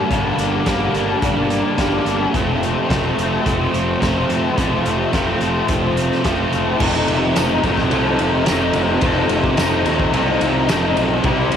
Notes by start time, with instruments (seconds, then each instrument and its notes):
Already playing: overdriven electric guitar G3 A#3 D4 G4
0.10 fingered electric bass G1, overdriven electric guitar G2 D3 G3 A#3 D4 G4, kick, closed hi-hat
0.38 fingered electric bass G1, overdriven electric guitar G3 A#3 D4, closed hi-hat
0.65 fingered electric bass G1, overdriven electric guitar D3 G3 A#3 D4 G4, kick, snare, closed hi-hat
0.70 overdriven electric guitar D4
0.94 fingered electric bass G1, overdriven electric guitar A#3 D4, closed hi-hat
0.98 overdriven electric guitar G3
1.22 fingered electric bass G1, overdriven electric guitar G2 D3 G3 A#3 D4 G4, kick, closed hi-hat
1.50 overdriven electric guitar G3 A#3 D4 G4, closed hi-hat
1.77 fingered electric bass G1, overdriven electric guitar D3 G3 A#3 D4 G4, kick, snare, closed hi-hat
2.05 fingered electric bass G1, overdriven electric guitar A#3 D4, closed hi-hat
2.10 overdriven electric guitar G3
2.33 fingered electric bass F1, overdriven electric guitar F2 C3 F3 A3 C4 F4, kick, closed hi-hat
2.61 overdriven electric guitar F3 A3 C4, closed hi-hat
2.89 fingered electric bass F1, overdriven electric guitar C3 F3 A3 C4 F4, kick, snare, closed hi-hat
3.17 fingered electric bass F1, overdriven electric guitar F3 A3 C4, closed hi-hat
3.45 fingered electric bass F1, overdriven electric guitar F2 C3 F3 A3 C4 F4, kick, closed hi-hat
3.72 fingered electric bass F1, overdriven electric guitar F3 A3 C4 F4, closed hi-hat
4.00 fingered electric bass F1, overdriven electric guitar C3 F3 A3 C4 F4, kick, snare, closed hi-hat
4.29 fingered electric bass F2, overdriven electric guitar F3 A3 C4, closed hi-hat
4.57 fingered electric bass F1, overdriven electric guitar F2 C3 F3 A3 C4 F4, kick, closed hi-hat
4.85 fingered electric bass F1, overdriven electric guitar F3 A3 C4, closed hi-hat
5.13 fingered electric bass F1, overdriven electric guitar C3 F3 A3 C4 F4, kick, snare, closed hi-hat
5.40 fingered electric bass F1, overdriven electric guitar F3 A3 C4, closed hi-hat
5.68 fingered electric bass F1, overdriven electric guitar F2 C3 F3 A3 C4 F4, kick, closed hi-hat
5.96 overdriven electric guitar F3 A3 C4 F4, closed hi-hat
6.12 snare
6.23 fingered electric bass F1, overdriven electric guitar C3 F3 A3 C4 F4, kick, snare, closed hi-hat
6.51 fingered electric bass F1, overdriven electric guitar F3 A3 C4, closed hi-hat
6.78 fingered electric bass F1, overdriven electric guitar F2 C3 D#3 F3 C4 D#4 A4, kick, crash
6.82 overdriven electric guitar A3 D#4
7.08 fingered electric bass F1, ride
7.34 fingered electric bass F1, overdriven electric guitar C3 D#3 F3 A3 C4 D#4 A4, snare, ride, tambourine
7.38 overdriven electric guitar D#4
7.63 fingered electric bass F1, overdriven electric guitar D#3 A3 D#4, kick, ride
7.77 kick, snare
7.90 fingered electric bass C2, overdriven electric guitar F2 C3 D#3 F3 A3 C4 D#4 A4, ride
7.94 overdriven electric guitar D#4
8.19 fingered electric bass F1, ride
8.45 fingered electric bass F1, overdriven electric guitar C3 D#3 F3 A3 C4 D#4 A4, snare, ride, tambourine
8.73 fingered electric bass F1, ride
9.01 fingered electric bass F1, overdriven electric guitar F2 C3 D#3 F3 A3 C4 D#4 A4, kick, ride
9.29 fingered electric bass F1, ride
9.44 kick
9.57 fingered electric bass F1, overdriven electric guitar C3 D#3 F3 A3 C4 D#4 A4, snare, ride, tambourine
9.85 fingered electric bass D#2, overdriven electric guitar D#3 A3 D#4, ride
9.99 kick
10.12 fingered electric bass C2, overdriven electric guitar F2 C3 D#3 F3 A3 C4 D#4 A4, ride
10.16 overdriven electric guitar D#4
10.41 fingered electric bass C2, ride
10.68 fingered electric bass F1, overdriven electric guitar C3 D#3 F3 A3 C4 D#4 A4, snare, ride, tambourine
10.97 fingered electric bass B1, ride
11.23 fingered electric bass C2, overdriven electric guitar C3 G3 C4 E4 G4, kick, ride
11.52 fingered electric bass C2, ride